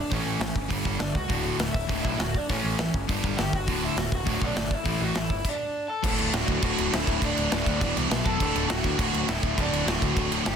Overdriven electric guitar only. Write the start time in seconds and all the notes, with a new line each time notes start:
Already playing: D4 D5
0.11 C#4 C#5
0.99 D4 D5
1.16 F#4 F#5
1.73 E4 E5
2.02 E4 E5
2.19 F#4 F#5
2.36 D4 D5
2.49 C#4 C#5
3.37 G4 F#5 G5
3.55 F#4 F#5
3.85 E4 E5
3.99 F#4 F#5
4.14 F#4 F#5
4.44 D4 D5
4.74 E4 E5
5.03 F#4 F#5
5.18 E4 E5
5.48 D4 D5
5.88 A4 A5
6.34 F#4 F#5
6.64 F#4 F#5
6.94 E4 E5
7.24 D4 D5
7.51 D4 D5
8.25 A4 A5
8.70 F#4 F#5
8.99 F#4 F#5
9.31 E4 E5
9.58 D4 D5
9.86 F#4 F#5
10.46 G4 G5